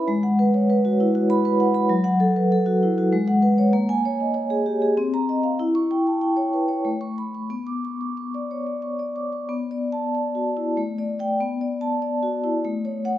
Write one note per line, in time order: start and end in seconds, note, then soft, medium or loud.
0.08 1.86 G#3 medium
0.23 0.47 F#5 medium
0.39 0.63 B4 medium
0.54 0.69 C#5 soft
0.70 0.93 B4 medium
0.85 1.08 F#4 soft
1.00 1.15 E4 soft
1.15 1.39 F#4 medium
1.30 1.54 B5 medium
1.45 1.69 B4 medium
1.60 1.84 F#5 medium
1.74 1.90 B5 medium
1.89 3.08 F#3 medium
2.04 2.29 F#5 medium
2.20 2.45 A4 medium
2.36 2.51 B4 soft
2.52 2.76 A4 medium
2.66 2.91 F#4 medium
2.83 2.97 E4 soft
2.98 3.13 F#4 medium
3.12 3.72 G#3 medium
3.28 3.52 F#5 medium
3.42 3.67 B4 medium
3.58 3.73 C#5 soft
3.73 4.93 A#3 medium
3.89 4.13 G#5 medium
4.05 4.29 C#5 medium
4.20 4.35 D#5 soft
4.34 4.59 C#5 medium
4.50 4.75 G#4 soft
4.66 4.81 G4 soft
4.82 4.97 G#4 medium
4.97 5.58 C4 medium
5.14 5.38 A#5 medium
5.29 5.54 D#5 soft
5.43 5.59 F5 soft
5.59 6.82 E4 medium
5.75 6.00 C#6 medium
5.91 6.16 G5 soft
6.07 6.22 A5 soft
6.21 6.47 G5 soft
6.37 6.63 C#5 soft
6.53 6.70 B4 soft
6.68 6.85 C#5 soft
6.85 7.49 A3 soft
7.01 7.28 C#6 soft
7.18 7.45 B5 soft
7.35 7.52 C#6 soft
7.50 9.46 B3 soft
7.67 7.94 D6 soft
7.85 8.12 C#6 soft
8.01 8.18 D6 soft
8.17 8.44 C#6 soft
8.34 8.61 D5 soft
8.51 8.68 C#5 soft
8.66 8.94 D5 soft
8.82 9.10 C#6 soft
8.99 9.27 D5 soft
9.16 9.43 D6 soft
9.33 9.50 C#6 soft
9.49 10.73 B3 medium
9.71 10.06 D5 soft
9.92 10.27 A5 medium
10.15 10.48 D5 soft
10.35 10.69 F#4 soft
10.57 10.78 E4 soft
10.77 11.38 A3 medium
10.98 11.18 D5 soft
11.19 11.38 D5 soft
11.19 11.38 G5 medium
11.41 12.60 B3 medium
11.61 11.94 D5 soft
11.81 12.14 A5 medium
12.02 12.35 D5 soft
12.23 12.56 F#4 soft
12.44 12.64 E4 soft
12.65 13.18 A3 medium
12.85 13.04 C#5 soft
13.05 13.18 C#5 soft
13.05 13.18 F#5 medium